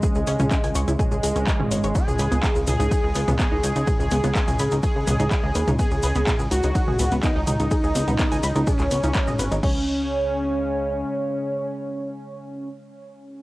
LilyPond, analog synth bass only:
\new Staff \with { instrumentName = "Analog synth bass" } { \clef bass \time 4/4 \key gis \phrygian \tempo 4 = 125 r16 cis,16 cis,16 cis,16 r16 cis,16 cis,16 cis,16 r16 cis,16 cis,16 cis,16 r16 gis,,16 gis,,16 gis,,16 | r16 cis,16 cis,16 cis,16 r16 cis,16 cis,16 cis,16 r16 cis,16 cis,16 cis,16 r16 cis,16 cis,16 cis,16 | r16 cis,16 cis,16 cis,16 r16 cis,16 cis,16 cis,16 r16 cis,16 cis,16 cis,16 r16 cis,16 dis,16 cis,16 | r16 cis,16 cis,16 cis,16 r16 cis,16 cis,16 cis,16 r16 cis,16 cis,16 cis,16 r16 cis,16 cis,16 cis,16 |
r16 cis,16 cis,16 cis,16 r16 cis,16 cis,16 cis,16 r16 cis,16 cis,16 cis,16 r16 gis,,16 gis,,16 gis,,16 | cis,2. r4 | r1 | }